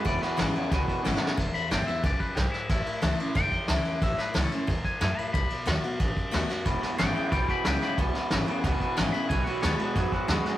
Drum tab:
RD |x--x--x--x--x--x--------|x--x--x--x--x--x--x--x--|x--x--x--x--x--x--x--x--|x--x--x--x--x--x--x--x--|
SD |---o--o-----o-----o-o-o-|o-----o-----o-----o--o--|o-----o-----o-----o-----|o--o--o-----------o-----|
BD |o-----------o--o--------|o-----------o--o--------|o-----------o--o--------|o-----------o--o--------|

RD |x--x--x--x--x--x--x--x--|x--x--x--x--x--x--x--x--|x--x--x--x--x--x--x--x--|x--x--x--x--x--x--x--x--|
SD |------o-----------o--o--|o--o--o-----------o--o--|---o--o-----o-----o-----|------o-----o-----o--o--|
BD |o-----------o--o--------|o-----------o--o--------|o-----------o--o--------|o-----------o--o--------|